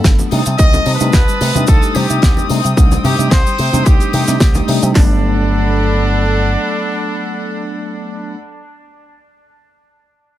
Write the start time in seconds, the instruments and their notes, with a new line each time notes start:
Already playing: tine electric piano F#3 A3 B3 D4, string section A4 F#5 B5
0.04 picked electric bass G1, synth arpeggio sound A3, kick, snare, closed hi-hat, tambourine, shaker
0.19 synth arpeggio sound B3, tambourine, high conga, shaker
0.31 picked electric bass C3, tine electric piano G3 A3 D4 D#4, string section C4 A5 D#6, synth arpeggio sound D#4, open hi-hat, tambourine
0.46 picked electric bass C3, synth arpeggio sound G3, closed hi-hat, tambourine, shaker
0.58 picked electric bass C2, tine electric piano G3 A3 C4 D#4, synth arpeggio sound G3, trumpet section D#5, kick, closed hi-hat, tambourine, shaker
0.73 synth arpeggio sound A3, closed hi-hat, tambourine, high conga, shaker
0.86 picked electric bass C3, synth arpeggio sound C4, open hi-hat, tambourine
0.96 trumpet section B4
1.00 picked electric bass C3, tine electric piano G3 A3 D4 D#4, synth arpeggio sound D#4, closed hi-hat, tambourine, shaker
1.13 picked electric bass C2, synth arpeggio sound G4, kick, snare, closed hi-hat, tambourine, high conga, shaker
1.28 synth arpeggio sound G3, tambourine, shaker
1.41 picked electric bass C3, synth arpeggio sound A3, open hi-hat, tambourine
1.54 picked electric bass C3, tine electric piano G3 A3 D4 D#4, synth arpeggio sound C4, closed hi-hat, tambourine, high conga, shaker
1.67 picked electric bass C2, trumpet section A4, kick, closed hi-hat, tambourine, shaker
1.83 synth arpeggio sound G4, tambourine, shaker
1.95 picked electric bass C3, synth arpeggio sound G3, trumpet section G4, open hi-hat, tambourine, high conga
2.10 picked electric bass C3, synth arpeggio sound D#4, closed hi-hat, tambourine, shaker
2.22 picked electric bass C2, synth arpeggio sound C4, kick, snare, closed hi-hat, tambourine, shaker
2.37 synth arpeggio sound D#4, tambourine, high conga, shaker
2.49 picked electric bass C3, tine electric piano G3 A3 D4 D#4, synth arpeggio sound D#4, string section G5, open hi-hat, tambourine
2.64 picked electric bass C3, synth arpeggio sound G3, closed hi-hat, tambourine, shaker
2.77 picked electric bass C2, tine electric piano G3 A3 D4 D#4, kick, closed hi-hat, tambourine, shaker
2.91 synth arpeggio sound A3, closed hi-hat, tambourine, high conga, shaker
3.04 picked electric bass C3, synth arpeggio sound C4, trumpet section G4, open hi-hat, tambourine, low conga
3.19 picked electric bass C3, tine electric piano G3 A3 D4 D#4, synth arpeggio sound D#4, closed hi-hat, tambourine, shaker
3.31 picked electric bass C2, synth arpeggio sound G4, trumpet section C5, kick, snare, closed hi-hat, tambourine, high conga, shaker
3.46 synth arpeggio sound G3, closed hi-hat, tambourine, shaker
3.58 picked electric bass C3, synth arpeggio sound A3, open hi-hat, tambourine
3.72 picked electric bass C3, tine electric piano G3 A3 D4 D#4, synth arpeggio sound C4, closed hi-hat, tambourine, high conga, shaker
3.86 picked electric bass C2, synth arpeggio sound D#4, trumpet section G4, kick, closed hi-hat, tambourine, shaker
4.00 synth arpeggio sound G4, closed hi-hat, tambourine, shaker
4.13 picked electric bass C3, synth arpeggio sound D#4, open hi-hat, tambourine, high conga
4.27 picked electric bass C3, tine electric piano G3 A3 D4 D#4, synth arpeggio sound C4, snare, closed hi-hat, tambourine, shaker
4.40 picked electric bass C2, synth arpeggio sound A3, kick, snare, closed hi-hat, tambourine, shaker
4.54 tine electric piano G3 A3 D4 D#4, synth arpeggio sound G4, closed hi-hat, tambourine, high conga, shaker
4.67 picked electric bass C3, tine electric piano G3 A3 D4 D#4, synth arpeggio sound C4, open hi-hat, tambourine
4.82 picked electric bass C3, synth arpeggio sound G3, closed hi-hat, tambourine, shaker
4.94 picked electric bass G1, tine electric piano F#3 A3 D4, synth arpeggio sound F#3, trumpet section D4, string section A4 F#5 B5, kick, snare, open hi-hat